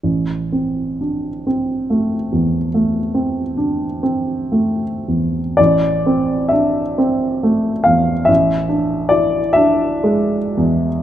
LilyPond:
<<
  \new Staff \with { instrumentName = "Grand piano" } { \time 12/8 \key a \minor \tempo 4. = 44 r1. | d''4 e''4. f''8 e''4 d''8 e''4. | }
  \new Staff \with { instrumentName = "Grand piano" } { \time 12/8 \key a \minor a,,8 c'8 d'8 c'8 a8 e,8 a8 c'8 d'8 c'8 a8 e,8 | a,,8 c'8 d'8 c'8 a8 e,8 a,,8 d'8 e'8 d'8 gis8 e,8 | }
>>